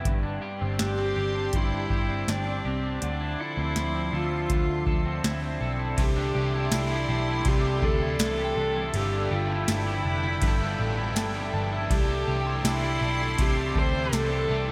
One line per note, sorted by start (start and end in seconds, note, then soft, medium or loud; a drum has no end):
0.00 0.13 C3 medium
0.00 0.13 B3 medium
0.00 0.13 E4 medium
0.00 0.41 G4 medium
0.04 0.38 G1 medium
0.04 1.52 G2 medium
0.04 2.99 G4 medium
0.04 5.94 D5 medium
0.04 2.99 G5 medium
0.04 2.99 C6 medium
0.04 kick medium
0.04 closed hi-hat medium
0.23 0.79 D4 medium
0.42 1.15 G4 medium
0.61 0.78 G1 medium
0.61 0.98 C4 medium
0.79 1.12 G1 medium
0.79 1.35 D4 medium
0.79 1.57 G4 loud
0.79 snare medium
0.79 closed hi-hat medium
0.98 2.09 C4 medium
1.16 1.49 G1 medium
1.16 1.89 G4 medium
1.35 1.72 D4 medium
1.53 1.86 G1 medium
1.53 3.09 G2 medium
1.53 2.31 E4 medium
1.53 kick medium
1.53 closed hi-hat medium
1.72 2.27 D4 medium
1.90 2.23 G1 medium
1.90 2.64 G4 medium
1.90 kick medium
2.10 2.46 C4 medium
2.28 2.60 G1 medium
2.28 2.83 D4 medium
2.28 2.68 D4 medium
2.28 snare medium
2.28 closed hi-hat medium
2.47 3.57 C4 medium
2.65 2.97 C2 medium
2.65 3.02 C4 medium
2.65 3.09 G4 medium
2.84 3.20 D4 soft
3.01 3.35 D2 medium
3.01 4.50 D3 medium
3.01 5.95 F3 medium
3.01 3.42 D4 medium
3.01 5.95 E5 medium
3.01 5.95 C6 medium
3.01 closed hi-hat medium
3.21 3.76 E4 medium
3.39 4.16 E4 medium
3.39 4.13 A4 medium
3.57 3.74 D2 medium
3.57 3.94 C4 medium
3.76 4.09 D2 medium
3.76 4.53 E4 medium
3.76 snare medium
3.76 closed hi-hat medium
3.95 5.05 C4 medium
4.13 4.46 D2 medium
4.13 5.25 F4 medium
4.13 4.86 A4 medium
4.50 4.83 D2 medium
4.50 6.57 D3 medium
4.50 kick loud
4.50 closed hi-hat medium
4.87 5.19 D2 medium
4.87 5.60 A4 medium
4.87 kick medium
5.05 5.42 C4 medium
5.24 5.57 D2 medium
5.24 5.79 E4 medium
5.24 snare medium
5.24 closed hi-hat medium
5.42 6.19 C4 medium
5.61 5.93 B1 medium
5.61 6.34 A4 medium
5.79 6.16 E4 soft
5.97 6.31 C2 loud
5.97 6.72 C3 medium
5.97 6.71 E3 medium
5.97 6.72 A3 medium
5.97 6.73 D4 medium
5.97 6.75 G4 medium
5.97 14.72 A4 medium
5.97 8.91 D5 medium
5.97 11.87 E5 medium
5.97 8.91 C6 loud
5.97 kick loud
5.97 ride medium
6.16 6.72 D4 medium
6.35 6.68 C2 medium
6.35 6.90 G4 medium
6.54 7.28 E4 medium
6.54 8.93 A5 medium
6.71 7.05 C2 loud
6.71 7.46 E3 medium
6.71 7.47 A3 medium
6.71 7.09 D4 medium
6.71 7.48 D4 medium
6.71 7.49 E4 medium
6.71 snare loud
6.71 ride medium
6.71 tambourine medium
6.91 7.82 G4 medium
7.09 7.41 B1 medium
7.09 7.65 D4 medium
7.28 8.01 E4 medium
7.44 7.79 C2 medium
7.44 8.93 C3 medium
7.44 9.02 C3 medium
7.44 8.95 E3 medium
7.44 8.96 A3 medium
7.44 kick loud
7.44 ride medium
7.48 10.45 D4 medium
7.48 7.86 G4 loud
7.65 8.19 D4 medium
7.82 8.15 D2 medium
7.82 8.38 G4 medium
7.82 8.21 A4 loud
7.82 kick medium
8.01 8.75 E4 medium
8.19 8.52 C2 medium
8.19 8.57 D4 medium
8.19 8.97 A4 loud
8.19 snare loud
8.19 ride soft
8.19 tambourine medium
8.38 9.31 G4 medium
8.45 9.27 G5 medium
8.57 8.90 C2 medium
8.57 9.12 D4 medium
8.76 9.16 E4 medium
8.93 9.27 G1 loud
8.93 10.39 G2 medium
8.93 10.41 G2 medium
8.93 10.42 D3 medium
8.93 10.42 F3 medium
8.93 10.43 B3 medium
8.93 9.34 G4 loud
8.93 11.88 G5 medium
8.93 11.88 B5 medium
8.93 ride medium
9.13 9.68 D4 medium
9.31 9.64 G1 medium
9.31 9.71 F4 medium
9.31 9.86 G4 medium
9.50 10.23 E4 medium
9.68 10.01 G1 loud
9.68 10.05 D4 medium
9.68 10.80 E4 medium
9.68 snare loud
9.68 ride medium
9.68 tambourine medium
9.87 10.79 G4 medium
10.05 10.38 F1 medium
10.05 10.60 D4 medium
10.24 10.98 E4 medium
10.41 10.75 G1 loud
10.41 11.90 G2 medium
10.41 11.98 G2 medium
10.41 11.89 D3 medium
10.41 11.90 F3 medium
10.41 11.90 B3 medium
10.41 kick loud
10.41 ride medium
10.45 11.91 E4 medium
10.45 12.23 A5 medium
10.61 11.16 D4 medium
10.79 11.16 A1 medium
10.79 11.34 G4 medium
10.98 11.71 E4 medium
11.16 11.49 G1 loud
11.16 11.53 D4 medium
11.16 snare loud
11.16 ride medium
11.16 tambourine soft
11.34 12.27 G4 medium
11.54 11.86 G1 medium
11.54 12.09 D4 medium
11.72 12.12 E4 medium
11.89 12.23 C2 loud
11.89 12.64 C3 medium
11.89 12.64 E3 medium
11.89 12.65 A3 medium
11.89 12.66 D4 medium
11.89 12.61 G4 medium
11.89 14.72 D5 medium
11.89 14.72 E5 medium
11.89 14.72 C6 loud
11.89 kick loud
11.89 ride medium
12.09 12.64 D4 medium
12.28 12.60 C2 medium
12.28 12.83 G4 medium
12.41 14.72 G5 medium
12.45 13.19 E4 medium
12.45 14.72 C6 medium
12.51 14.72 D6 soft
12.64 12.97 C2 loud
12.64 13.38 E3 medium
12.64 13.38 A3 medium
12.64 13.01 D4 medium
12.64 13.39 D4 medium
12.64 13.43 E4 loud
12.64 snare loud
12.64 ride medium
12.64 tambourine medium
12.83 13.75 G4 medium
13.01 13.34 B1 medium
13.01 13.56 D4 medium
13.20 13.93 E4 medium
13.38 13.71 C2 medium
13.38 14.49 C3 medium
13.38 14.72 C3 medium
13.38 14.51 E3 medium
13.38 14.50 A3 medium
13.38 14.48 D4 medium
13.38 kick loud
13.38 ride medium
13.42 13.80 G4 loud
13.57 14.12 D4 medium
13.75 14.08 D2 medium
13.75 14.31 G4 medium
13.75 14.17 C5 loud
13.75 kick medium
13.94 14.68 E4 medium
14.12 14.45 C2 medium
14.12 14.50 D4 medium
14.12 14.72 A4 loud
14.12 snare loud
14.12 ride medium
14.12 tambourine soft
14.31 14.72 G4 medium
14.49 14.72 C2 medium
14.49 14.72 E3 soft
14.49 14.72 A3 soft
14.49 14.72 D4 soft
14.49 14.72 D4 medium
14.68 14.72 E4 medium